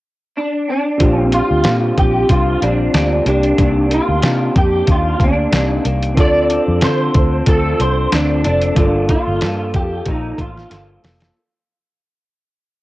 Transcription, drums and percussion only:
1.00 kick, closed hi-hat
1.32 closed hi-hat
1.64 snare, closed hi-hat
1.98 kick, closed hi-hat
2.29 kick, closed hi-hat
2.62 closed hi-hat
2.94 snare, closed hi-hat
3.26 closed hi-hat
3.43 closed hi-hat
3.58 kick, closed hi-hat
3.91 closed hi-hat
4.22 snare, closed hi-hat
4.56 kick, closed hi-hat
4.87 kick, closed hi-hat
5.20 kick, closed hi-hat
5.53 snare, closed hi-hat
5.85 closed hi-hat
6.03 closed hi-hat
6.17 kick, closed hi-hat
6.50 closed hi-hat
6.81 snare, closed hi-hat
7.14 kick, closed hi-hat
7.46 kick, closed hi-hat
7.80 closed hi-hat
8.12 snare, closed hi-hat
8.44 closed hi-hat
8.62 closed hi-hat
8.76 kick, closed hi-hat
9.09 kick, closed hi-hat
9.41 snare, closed hi-hat
9.74 kick, closed hi-hat
10.05 kick, closed hi-hat
10.38 kick, closed hi-hat
10.57 snare
10.71 snare, closed hi-hat
11.04 snare, open hi-hat
11.20 snare, closed hi-hat

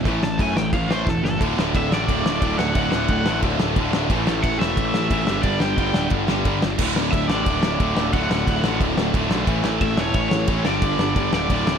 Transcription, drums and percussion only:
0.05 kick, crash
0.23 snare
0.39 kick, crash
0.57 snare
0.73 kick, crash
0.91 snare
1.07 kick, snare
1.25 snare
1.41 kick, ride
1.59 snare
1.75 kick, ride
1.92 snare
2.09 kick, ride
2.26 snare
2.42 kick, ride
2.59 snare
2.75 kick, ride
2.92 snare
3.08 kick, ride
3.26 snare
3.42 kick, ride
3.60 snare
3.76 kick, ride
3.93 snare
4.10 kick, ride
4.27 snare
4.44 kick, ride
4.61 snare
4.77 kick, ride
4.94 snare
5.11 kick, ride
5.27 snare
5.43 kick, ride
5.60 snare
5.78 kick, ride
5.94 snare
6.10 kick, ride
6.28 snare
6.45 kick, ride
6.62 snare
6.79 kick, crash
6.96 snare
7.13 kick, ride
7.30 snare
7.46 kick, ride
7.63 snare
7.80 kick, ride
7.97 snare
8.13 kick, ride
8.31 snare
8.47 kick, ride
8.64 snare
8.81 kick, ride
8.98 snare
9.14 kick, ride
9.31 snare
9.47 kick, ride
9.64 snare
9.81 kick, ride
9.97 snare
10.14 kick, ride
10.31 snare
10.48 kick, ride
10.65 snare
10.82 kick, ride
10.99 snare
11.16 kick, ride
11.33 snare
11.50 kick, ride
11.67 snare

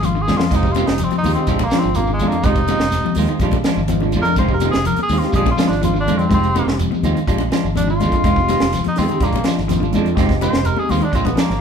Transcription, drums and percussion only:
0.03 closed hi-hat, high conga, shekere
0.16 shekere
0.28 snare, low conga, shekere
0.40 snare, shekere
0.51 kick, closed hi-hat, crash, high conga, shekere
0.63 kick, shekere
0.75 closed hi-hat, high conga, shekere
0.87 snare, closed hi-hat, shekere
0.98 closed hi-hat, shekere
1.10 closed hi-hat, high conga, shekere
1.24 open hi-hat, low conga, shekere
1.35 closed hi-hat, shekere
1.47 kick, closed hi-hat, high conga, shekere
1.59 kick, closed hi-hat, high conga, shekere
1.70 snare, closed hi-hat, shekere
1.83 shekere
1.95 closed hi-hat, high conga, shekere
2.07 shekere
2.19 closed hi-hat, low conga, shekere
2.31 closed hi-hat, shekere
2.43 kick, closed hi-hat, high conga, shekere
2.55 kick, closed hi-hat, shekere
2.68 closed hi-hat, high conga, shekere
2.80 snare, shekere
2.91 snare, closed hi-hat, high conga, shekere
3.04 high conga, shekere
3.15 open hi-hat, high conga, low conga, shekere
3.27 closed hi-hat, shekere
3.40 kick, closed hi-hat, high conga, shekere
3.51 kick, closed hi-hat, high conga, shekere
3.64 snare, closed hi-hat, shekere
3.78 shekere
3.88 closed hi-hat, high conga, shekere
4.00 high conga, shekere
4.12 closed hi-hat, low conga, shekere
4.25 closed hi-hat, shekere
4.36 kick, closed hi-hat, high conga, low conga, shekere
4.48 kick, shekere
4.60 closed hi-hat, high conga, shekere
4.73 snare, closed hi-hat, shekere
4.85 closed hi-hat, high conga, shekere
4.96 closed hi-hat, high conga, shekere
5.09 open hi-hat, high conga, low conga, shekere
5.22 snare, closed hi-hat, shekere
5.32 kick, closed hi-hat, high conga, shekere
5.46 kick, closed hi-hat, high conga, shekere
5.58 snare, closed hi-hat, low conga, shekere
5.71 snare, shekere
5.83 closed hi-hat, high conga, shekere
5.96 shekere
6.08 closed hi-hat, low conga, shekere
6.19 closed hi-hat, shekere
6.31 kick, closed hi-hat, high conga, low conga, shekere
6.44 closed hi-hat, shekere
6.55 closed hi-hat, high conga, shekere
6.68 snare, shekere
6.79 closed hi-hat, high conga, shekere
6.92 high conga, shekere
7.04 closed hi-hat, high conga, low conga, shekere
7.17 closed hi-hat, shekere
7.27 kick, closed hi-hat, high conga, shekere
7.38 closed hi-hat, high conga, shekere
7.52 snare, closed hi-hat, shekere
7.65 shekere
7.76 closed hi-hat, high conga, shekere
7.89 shekere
8.00 closed hi-hat, low conga, shekere
8.12 kick, closed hi-hat, shekere
8.24 kick, closed hi-hat, high conga, shekere
8.36 kick, shekere
8.49 snare, closed hi-hat, high conga, shekere
8.60 snare, closed hi-hat, shekere
8.73 snare, closed hi-hat, high conga, shekere
8.84 closed hi-hat, high conga, shekere
8.96 snare, open hi-hat, low conga, shekere
9.09 closed hi-hat, shekere
9.20 kick, closed hi-hat, high conga, shekere
9.33 kick, closed hi-hat, high conga, shekere
9.44 snare, closed hi-hat, shekere
9.58 snare, shekere
9.69 snare, closed hi-hat, high conga, shekere
9.83 high conga, shekere
9.93 closed hi-hat, low conga, shekere
10.06 closed hi-hat, shekere
10.17 kick, snare, closed hi-hat, high conga, shekere
10.29 kick, snare, closed hi-hat, shekere
10.41 closed hi-hat, high conga, shekere
10.53 snare, shekere
10.65 closed hi-hat, high conga, shekere
10.77 high conga, shekere
10.89 open hi-hat, low conga, shekere
11.01 closed hi-hat, shekere
11.13 kick, closed hi-hat, high conga, shekere
11.25 kick, closed hi-hat, high conga, shekere
11.37 snare, closed hi-hat, shekere
11.50 snare, shekere

